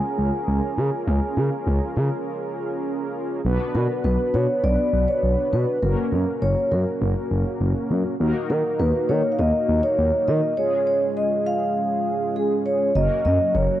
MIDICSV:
0, 0, Header, 1, 4, 480
1, 0, Start_track
1, 0, Key_signature, 6, "major"
1, 0, Tempo, 594059
1, 866, Time_signature, 4, 2, 24, 8
1, 11150, End_track
2, 0, Start_track
2, 0, Title_t, "Vibraphone"
2, 0, Program_c, 0, 11
2, 0, Note_on_c, 0, 80, 86
2, 2275, Note_off_c, 0, 80, 0
2, 3027, Note_on_c, 0, 70, 89
2, 3135, Note_off_c, 0, 70, 0
2, 3267, Note_on_c, 0, 71, 94
2, 3507, Note_on_c, 0, 73, 98
2, 3514, Note_off_c, 0, 71, 0
2, 3730, Note_off_c, 0, 73, 0
2, 3747, Note_on_c, 0, 74, 110
2, 4106, Note_on_c, 0, 73, 97
2, 4118, Note_off_c, 0, 74, 0
2, 4467, Note_on_c, 0, 71, 91
2, 4477, Note_off_c, 0, 73, 0
2, 4690, Note_off_c, 0, 71, 0
2, 4707, Note_on_c, 0, 70, 95
2, 5188, Note_on_c, 0, 73, 97
2, 5201, Note_off_c, 0, 70, 0
2, 5410, Note_off_c, 0, 73, 0
2, 5427, Note_on_c, 0, 70, 82
2, 6114, Note_off_c, 0, 70, 0
2, 6867, Note_on_c, 0, 70, 86
2, 7107, Note_on_c, 0, 71, 89
2, 7114, Note_off_c, 0, 70, 0
2, 7330, Note_off_c, 0, 71, 0
2, 7345, Note_on_c, 0, 73, 93
2, 7530, Note_on_c, 0, 77, 72
2, 7535, Note_off_c, 0, 73, 0
2, 7585, Note_on_c, 0, 75, 100
2, 7586, Note_off_c, 0, 77, 0
2, 7920, Note_off_c, 0, 75, 0
2, 7944, Note_on_c, 0, 73, 94
2, 8304, Note_on_c, 0, 75, 97
2, 8316, Note_off_c, 0, 73, 0
2, 8543, Note_on_c, 0, 73, 107
2, 8553, Note_off_c, 0, 75, 0
2, 8773, Note_off_c, 0, 73, 0
2, 8783, Note_on_c, 0, 73, 99
2, 8892, Note_off_c, 0, 73, 0
2, 9024, Note_on_c, 0, 75, 108
2, 9263, Note_on_c, 0, 77, 104
2, 9273, Note_off_c, 0, 75, 0
2, 9953, Note_off_c, 0, 77, 0
2, 9987, Note_on_c, 0, 68, 96
2, 10095, Note_off_c, 0, 68, 0
2, 10227, Note_on_c, 0, 73, 103
2, 10467, Note_on_c, 0, 75, 114
2, 10474, Note_off_c, 0, 73, 0
2, 10696, Note_off_c, 0, 75, 0
2, 10705, Note_on_c, 0, 75, 107
2, 10946, Note_on_c, 0, 73, 106
2, 10953, Note_off_c, 0, 75, 0
2, 11150, Note_off_c, 0, 73, 0
2, 11150, End_track
3, 0, Start_track
3, 0, Title_t, "Analog polysynth"
3, 0, Program_c, 1, 90
3, 0, Note_on_c, 1, 61, 67
3, 0, Note_on_c, 1, 65, 61
3, 0, Note_on_c, 1, 68, 62
3, 0, Note_on_c, 1, 70, 75
3, 2754, Note_off_c, 1, 61, 0
3, 2754, Note_off_c, 1, 68, 0
3, 2754, Note_off_c, 1, 70, 0
3, 2755, Note_off_c, 1, 65, 0
3, 2786, Note_on_c, 1, 71, 92
3, 2787, Note_on_c, 1, 59, 80
3, 2787, Note_on_c, 1, 62, 74
3, 2787, Note_on_c, 1, 66, 72
3, 4674, Note_off_c, 1, 59, 0
3, 4674, Note_off_c, 1, 62, 0
3, 4674, Note_off_c, 1, 66, 0
3, 4674, Note_off_c, 1, 71, 0
3, 4707, Note_on_c, 1, 58, 70
3, 4707, Note_on_c, 1, 61, 62
3, 4707, Note_on_c, 1, 66, 64
3, 4707, Note_on_c, 1, 70, 77
3, 6594, Note_off_c, 1, 58, 0
3, 6594, Note_off_c, 1, 61, 0
3, 6594, Note_off_c, 1, 66, 0
3, 6594, Note_off_c, 1, 70, 0
3, 6626, Note_on_c, 1, 58, 80
3, 6626, Note_on_c, 1, 63, 79
3, 6626, Note_on_c, 1, 66, 74
3, 6626, Note_on_c, 1, 70, 94
3, 8514, Note_off_c, 1, 58, 0
3, 8514, Note_off_c, 1, 63, 0
3, 8514, Note_off_c, 1, 66, 0
3, 8514, Note_off_c, 1, 70, 0
3, 8545, Note_on_c, 1, 56, 71
3, 8545, Note_on_c, 1, 61, 65
3, 8545, Note_on_c, 1, 65, 64
3, 8545, Note_on_c, 1, 68, 76
3, 10433, Note_off_c, 1, 56, 0
3, 10433, Note_off_c, 1, 61, 0
3, 10433, Note_off_c, 1, 65, 0
3, 10434, Note_off_c, 1, 68, 0
3, 10466, Note_on_c, 1, 54, 72
3, 10466, Note_on_c, 1, 58, 65
3, 10466, Note_on_c, 1, 61, 64
3, 10466, Note_on_c, 1, 66, 64
3, 10466, Note_on_c, 1, 70, 77
3, 11150, Note_off_c, 1, 54, 0
3, 11150, Note_off_c, 1, 58, 0
3, 11150, Note_off_c, 1, 61, 0
3, 11150, Note_off_c, 1, 66, 0
3, 11150, Note_off_c, 1, 70, 0
3, 11150, End_track
4, 0, Start_track
4, 0, Title_t, "Analog synth bass"
4, 0, Program_c, 2, 38
4, 146, Note_on_c, 2, 37, 100
4, 254, Note_off_c, 2, 37, 0
4, 386, Note_on_c, 2, 37, 101
4, 493, Note_off_c, 2, 37, 0
4, 626, Note_on_c, 2, 49, 95
4, 734, Note_off_c, 2, 49, 0
4, 866, Note_on_c, 2, 37, 113
4, 973, Note_off_c, 2, 37, 0
4, 1106, Note_on_c, 2, 49, 95
4, 1213, Note_off_c, 2, 49, 0
4, 1346, Note_on_c, 2, 37, 103
4, 1454, Note_off_c, 2, 37, 0
4, 1587, Note_on_c, 2, 49, 107
4, 1694, Note_off_c, 2, 49, 0
4, 2786, Note_on_c, 2, 35, 105
4, 2894, Note_off_c, 2, 35, 0
4, 3026, Note_on_c, 2, 47, 104
4, 3134, Note_off_c, 2, 47, 0
4, 3266, Note_on_c, 2, 35, 106
4, 3374, Note_off_c, 2, 35, 0
4, 3506, Note_on_c, 2, 47, 100
4, 3613, Note_off_c, 2, 47, 0
4, 3746, Note_on_c, 2, 35, 108
4, 3853, Note_off_c, 2, 35, 0
4, 3986, Note_on_c, 2, 35, 100
4, 4093, Note_off_c, 2, 35, 0
4, 4226, Note_on_c, 2, 35, 93
4, 4333, Note_off_c, 2, 35, 0
4, 4466, Note_on_c, 2, 47, 100
4, 4573, Note_off_c, 2, 47, 0
4, 4706, Note_on_c, 2, 30, 109
4, 4813, Note_off_c, 2, 30, 0
4, 4946, Note_on_c, 2, 42, 93
4, 5053, Note_off_c, 2, 42, 0
4, 5186, Note_on_c, 2, 30, 106
4, 5294, Note_off_c, 2, 30, 0
4, 5426, Note_on_c, 2, 42, 102
4, 5534, Note_off_c, 2, 42, 0
4, 5666, Note_on_c, 2, 30, 116
4, 5774, Note_off_c, 2, 30, 0
4, 5906, Note_on_c, 2, 30, 99
4, 6013, Note_off_c, 2, 30, 0
4, 6146, Note_on_c, 2, 30, 104
4, 6253, Note_off_c, 2, 30, 0
4, 6386, Note_on_c, 2, 42, 98
4, 6493, Note_off_c, 2, 42, 0
4, 6626, Note_on_c, 2, 39, 117
4, 6733, Note_off_c, 2, 39, 0
4, 6867, Note_on_c, 2, 51, 98
4, 6974, Note_off_c, 2, 51, 0
4, 7107, Note_on_c, 2, 39, 101
4, 7214, Note_off_c, 2, 39, 0
4, 7347, Note_on_c, 2, 51, 99
4, 7454, Note_off_c, 2, 51, 0
4, 7587, Note_on_c, 2, 39, 101
4, 7694, Note_off_c, 2, 39, 0
4, 7826, Note_on_c, 2, 39, 99
4, 7934, Note_off_c, 2, 39, 0
4, 8066, Note_on_c, 2, 39, 101
4, 8174, Note_off_c, 2, 39, 0
4, 8306, Note_on_c, 2, 51, 104
4, 8414, Note_off_c, 2, 51, 0
4, 10467, Note_on_c, 2, 30, 104
4, 10574, Note_off_c, 2, 30, 0
4, 10707, Note_on_c, 2, 42, 103
4, 10814, Note_off_c, 2, 42, 0
4, 10947, Note_on_c, 2, 30, 109
4, 11054, Note_off_c, 2, 30, 0
4, 11150, End_track
0, 0, End_of_file